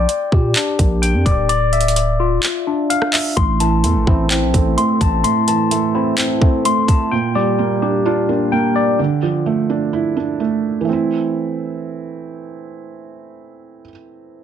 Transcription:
Already playing: tine electric piano D5 G5
0.09 closed hi-hat
0.32 808-style bass A#2, tine electric piano G4, kick
0.56 tine electric piano D4, clap, closed hi-hat
0.79 808-style bass A#1, tine electric piano A#3, kick, closed hi-hat
1.02 tine electric piano G5, closed hi-hat
1.14 808-style bass F2
1.26 808-style bass D1, tine electric piano D5, kick, closed hi-hat
1.49 tine electric piano D5, closed hi-hat
1.73 tine electric piano E5, closed hi-hat
1.81 closed hi-hat
1.88 closed hi-hat
1.96 closed hi-hat
2.20 tine electric piano F4
2.43 clap, closed hi-hat
2.67 tine electric piano D4
2.90 tine electric piano F5, closed hi-hat
3.02 cross-stick
3.13 tine electric piano E5, clap, open hi-hat
3.37 808-style bass A1, felt piano A2, tine electric piano C6, kick, closed hi-hat
3.60 felt piano E3, tine electric piano A5, closed hi-hat
3.84 808-style bass E2, felt piano A3, closed hi-hat
3.95 808-style bass A1
4.07 808-style bass A1, felt piano C4, tine electric piano E4, kick
4.30 tine electric piano C4, felt piano E4, clap, closed hi-hat
4.42 808-style bass A#1
4.54 808-style bass A1, tine electric piano A3, felt piano C4, kick, closed hi-hat
4.78 felt piano A3, tine electric piano C6, closed hi-hat
5.01 808-style bass A1, tine electric piano A5, kick, closed hi-hat
5.24 felt piano A2, tine electric piano C6, closed hi-hat
5.48 felt piano E3, tine electric piano A5, closed hi-hat
5.71 felt piano A3, closed hi-hat
5.95 felt piano C4, tine electric piano E4
6.18 tine electric piano C4, felt piano E4, clap, closed hi-hat
6.41 tine electric piano A3, felt piano C4, kick
6.65 felt piano A3, tine electric piano C6, closed hi-hat
6.88 tine electric piano A5, kick, closed hi-hat
7.11 felt piano A#2, tine electric piano G5
7.35 felt piano G3, tine electric piano D5
7.59 felt piano A#3
7.82 felt piano D4, tine electric piano G4
8.06 tine electric piano D4, felt piano F4
8.29 tine electric piano A#3, felt piano D4
8.52 felt piano A#3, tine electric piano G5
8.76 tine electric piano D5
8.99 felt piano D3
9.23 felt piano F3
9.46 felt piano A3
9.70 felt piano D4
9.93 felt piano E4
10.17 felt piano D4
10.40 felt piano A3
10.81 felt piano E3
10.85 felt piano A3 C4
10.93 felt piano E4

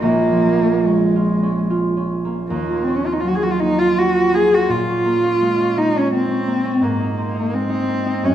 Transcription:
Already playing: harp G#3 A#3
0.01 harp A#1, cello A#3
0.31 harp F3
0.60 harp A#3
0.86 cello G#3, harp C#4
1.16 harp F4
1.43 harp C#4
1.70 harp F4
1.97 harp C#4
2.25 harp A#3
2.49 harp D#2, cello A#3
2.69 harp F4
2.84 cello C4, harp C#4
2.96 cello C#4
3.05 harp F4, cello F4
3.13 cello D#4
3.20 harp F#3, cello F4
3.28 cello F#4
3.35 cello G#4
3.42 harp F4, cello F#4
3.51 cello F4
3.60 harp A#3, cello D#4
3.79 cello F4, harp F4
3.97 harp C#4, cello F#4
4.15 harp F4
4.32 harp A#3, cello G#4
4.52 harp F4, cello F#4
4.69 harp A#2, cello F4
4.88 harp C#4
5.05 harp A#3
5.23 harp C#4
5.42 harp G#3
5.60 harp C#4
5.76 harp A#3, cello D#4
5.95 harp C#4, cello C#4
6.13 harp A#3, cello C4
6.30 harp C#4
6.48 harp A#3
6.65 harp C#4
6.81 harp G#2, cello A#3
7.00 harp D#4
7.18 harp C4
7.34 harp D#4
7.53 harp G#3, cello C4
7.69 harp D#4
7.88 harp A#3
8.06 harp D#4
8.23 harp F#2, cello C#4

